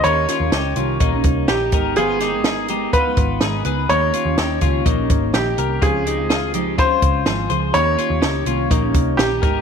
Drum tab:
HH |xxxxxxxx|xxxxxxxx|xxxxxxxx|xxxxxxxx|
SD |-oo---o-|-oo---o-|--o---o-|--o---o-|
BD |----oo-o|----oo--|---ooo--|o---oo--|

HH |xxxxxxxx|
SD |--o---o-|
BD |----oo-o|